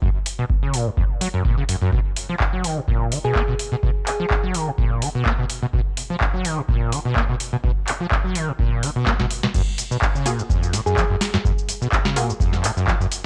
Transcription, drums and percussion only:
0.02 kick
0.26 open hi-hat
0.50 kick
0.74 open hi-hat
0.97 kick
1.21 open hi-hat
1.45 kick
1.69 open hi-hat
1.93 kick
2.16 open hi-hat
2.40 kick, clap
2.64 open hi-hat
2.88 kick
3.12 open hi-hat
3.35 kick, clap
3.59 open hi-hat
3.83 kick
4.07 clap, open hi-hat
4.30 kick, clap
4.54 open hi-hat
4.78 kick
5.02 open hi-hat
5.26 kick, clap
5.50 open hi-hat
5.73 kick
5.97 open hi-hat
6.21 kick, clap
6.45 open hi-hat
6.69 kick
6.92 open hi-hat
7.16 kick, clap
7.40 open hi-hat
7.64 kick
7.87 clap, open hi-hat
8.11 kick, clap
8.35 open hi-hat
8.59 kick
8.83 open hi-hat
9.07 kick, snare, clap
9.20 kick, snare
9.31 open hi-hat
9.43 snare
9.54 kick, crash, cabasa
9.78 open hi-hat, cabasa
9.92 cabasa
10.02 kick, clap, cabasa
10.15 cabasa
10.26 open hi-hat, cabasa
10.39 cabasa
10.50 kick, cabasa
10.63 cabasa
10.73 snare, open hi-hat, cabasa
10.87 cabasa
10.97 kick, clap, cabasa
11.21 snare, open hi-hat, cabasa
11.34 snare, cabasa
11.45 kick, cabasa
11.58 cabasa
11.69 open hi-hat, cabasa
11.82 cabasa
11.92 kick, clap, cabasa
12.05 snare, cabasa
12.16 open hi-hat, cabasa
12.30 cabasa
12.40 kick, cabasa
12.53 snare, cabasa
12.64 clap, open hi-hat, cabasa
12.77 cabasa
12.88 kick, clap, cabasa
13.01 cabasa
13.12 open hi-hat, cabasa

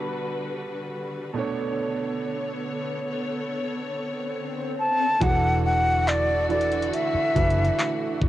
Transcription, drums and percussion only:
5.21 kick, closed hi-hat
6.08 clap, closed hi-hat
6.50 closed hi-hat
6.61 closed hi-hat
6.72 closed hi-hat
6.82 closed hi-hat
6.93 closed hi-hat
7.36 kick, closed hi-hat
7.50 closed hi-hat
7.64 closed hi-hat
7.79 clap, closed hi-hat
8.21 kick

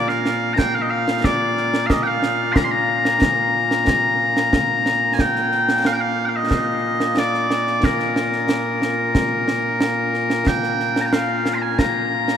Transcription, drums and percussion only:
0.09 snare
0.26 snare
0.58 concert bass drum, snare
1.08 snare
1.24 concert bass drum, snare
1.57 snare
1.74 snare
1.90 concert bass drum, snare
2.23 snare
2.56 concert bass drum, snare
3.05 snare
3.22 concert bass drum, snare
3.71 snare
3.87 concert bass drum, snare
4.37 snare
4.53 concert bass drum, snare
4.86 snare
5.19 concert bass drum, snare
5.36 snare
5.52 snare
5.69 snare
5.85 snare
6.51 concert bass drum, snare
7.00 snare
7.17 snare
7.34 snare
7.51 snare
7.67 snare
7.83 concert bass drum, snare
8.00 snare
8.16 snare
8.33 snare
8.49 snare
8.82 snare
9.15 concert bass drum, snare
9.48 snare
9.81 snare
10.14 snare
10.30 snare
10.47 concert bass drum, snare
10.63 snare
10.80 snare
10.96 snare
11.13 snare
11.46 snare
11.79 concert bass drum, snare
12.28 snare

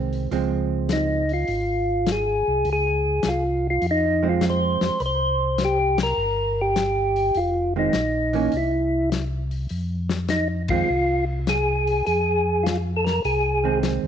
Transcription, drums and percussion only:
0.13 open hi-hat
0.32 open hi-hat
0.89 snare, closed hi-hat
1.29 open hi-hat
1.47 open hi-hat
2.06 snare, closed hi-hat
2.65 open hi-hat
3.23 snare, closed hi-hat
3.82 open hi-hat
4.41 snare, closed hi-hat
4.81 snare, open hi-hat
5.00 open hi-hat
5.58 snare, closed hi-hat
5.98 snare, ride
6.76 snare, closed hi-hat
7.16 open hi-hat
7.34 open hi-hat
7.93 snare, closed hi-hat
8.33 open hi-hat
8.52 open hi-hat
9.12 snare, closed hi-hat
9.51 open hi-hat
9.69 open hi-hat
10.09 snare
10.28 snare, closed hi-hat
10.68 kick, ride
11.47 snare, closed hi-hat
11.87 open hi-hat
12.06 open hi-hat
12.66 snare, closed hi-hat
13.06 snare, open hi-hat
13.25 open hi-hat
13.83 snare, closed hi-hat

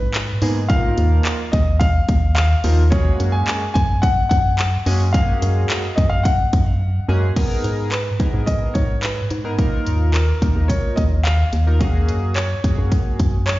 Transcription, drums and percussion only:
0.14 clap, closed hi-hat
0.42 open hi-hat
0.70 kick, closed hi-hat
0.98 closed hi-hat
1.25 clap, closed hi-hat
1.53 kick, closed hi-hat
1.81 kick, closed hi-hat
2.09 kick, closed hi-hat
2.36 clap, closed hi-hat
2.64 open hi-hat
2.92 kick, closed hi-hat
3.20 closed hi-hat
3.47 clap, closed hi-hat
3.75 kick, closed hi-hat
4.03 kick, closed hi-hat
4.31 kick, closed hi-hat
4.59 clap, closed hi-hat
4.86 open hi-hat
5.14 kick, closed hi-hat
5.42 closed hi-hat
5.70 clap, closed hi-hat
5.98 kick, closed hi-hat
6.25 kick, closed hi-hat
6.53 kick, closed hi-hat
7.36 kick, closed hi-hat, crash
7.64 closed hi-hat
7.92 clap, closed hi-hat
8.20 kick, closed hi-hat
8.47 kick, closed hi-hat
8.75 kick, closed hi-hat
9.03 clap, closed hi-hat
9.30 closed hi-hat
9.59 kick, closed hi-hat
9.86 closed hi-hat
10.14 clap, closed hi-hat
10.42 kick, closed hi-hat
10.70 kick, closed hi-hat
10.97 kick, closed hi-hat
11.25 clap, closed hi-hat
11.53 closed hi-hat
11.81 kick, closed hi-hat
12.09 closed hi-hat
12.36 clap, closed hi-hat
12.64 kick, closed hi-hat
12.92 kick, closed hi-hat
13.19 kick, closed hi-hat
13.47 clap, closed hi-hat

